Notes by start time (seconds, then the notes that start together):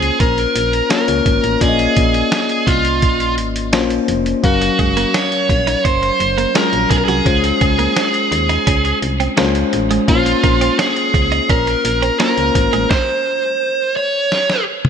Already playing: C#2 A#3 C#4 F4 G#4 C5
0.02 closed hi-hat
0.20 A#1 A#4, kick, closed hi-hat
0.38 closed hi-hat
0.56 A#1, closed hi-hat
0.73 closed hi-hat
0.90 A#3 C#4 F4 A#4 C#5, snare, closed hi-hat
1.08 C#2, closed hi-hat
1.26 G#1, kick, closed hi-hat
1.44 A1, closed hi-hat
1.61 A#1 A#3 C#4 F4 G#4 D5, kick, closed hi-hat
1.68 D#5
1.79 closed hi-hat
1.97 A#1, kick, closed hi-hat
2.14 closed hi-hat
2.32 snare, closed hi-hat
2.49 closed hi-hat
2.67 C2 F4, kick, closed hi-hat
2.85 closed hi-hat
3.02 A#1, kick, closed hi-hat
3.20 closed hi-hat
3.38 G#1, closed hi-hat
3.56 closed hi-hat
3.73 A#1 A#3 C#4 F4 C5, snare, closed hi-hat
3.90 closed hi-hat
4.08 F1, closed hi-hat
4.26 closed hi-hat
4.43 F#1 F#3 C#4 F#4 A#4 F5, kick, closed hi-hat
4.61 muted clean electric guitar stroke, closed hi-hat
4.79 F#1 G#3, kick, closed hi-hat
4.97 A#3, closed hi-hat
5.14 C#4 C#5, snare, closed hi-hat
5.32 closed hi-hat
5.49 A#1, muted clean electric guitar stroke, kick, closed hi-hat
5.67 D#4, closed hi-hat
5.85 F#1 C#4 C5, kick, closed hi-hat
6.03 muted clean electric guitar stroke, closed hi-hat
6.20 F#1, closed hi-hat
6.38 A#3, closed hi-hat
6.55 F#3 G#3 C#4 F4 A#4, snare, closed hi-hat
6.73 A#1, closed hi-hat
6.91 B1 G#4, muted clean electric guitar stroke, kick, closed hi-hat
6.98 A#4
7.05 C2 F#3 G#4, closed hi-hat
7.25 C#2 G#3 C#4 F4 C5, kick, closed hi-hat
7.44 muted clean electric guitar stroke, closed hi-hat
7.61 C#2 G#3, kick, closed hi-hat
7.79 A#3, closed hi-hat
7.97 C4, snare, closed hi-hat
8.14 closed hi-hat
8.32 D#2, muted clean electric guitar stroke, closed hi-hat
8.49 D#4, closed hi-hat
8.67 C#2 C#4, kick, closed hi-hat
8.85 muted clean electric guitar stroke, closed hi-hat
9.02 C2, closed hi-hat
9.20 C4, closed hi-hat
9.37 C#2 G#3 A#3 C#4 F4 C5, snare, closed hi-hat
9.55 closed hi-hat
9.73 A1, muted clean electric guitar stroke, closed hi-hat
9.91 G#3, closed hi-hat
10.08 A#1 A#3 C#4 F4 A#4, kick, closed hi-hat
10.15 C5
10.26 muted clean electric guitar stroke, closed hi-hat
10.44 A#1 A#3, kick, closed hi-hat
10.61 C4, closed hi-hat
10.79 C#4 G#4, snare, closed hi-hat
10.96 closed hi-hat
11.14 C#2, muted clean electric guitar stroke, kick, closed hi-hat
11.32 D#4, closed hi-hat
11.49 A#1 C#4 A#4, kick, closed hi-hat
11.67 muted clean electric guitar stroke, closed hi-hat
11.85 A#1, closed hi-hat
12.02 C4, closed hi-hat
12.19 A#3 C#4 F4 A#4 C5, snare, closed hi-hat
12.38 C#2, closed hi-hat
12.55 G#1, muted clean electric guitar stroke, kick, closed hi-hat
12.73 A1 G#3, closed hi-hat
12.90 C5, kick, snare
13.97 C#5
14.32 snare
14.50 snare
14.85 high tom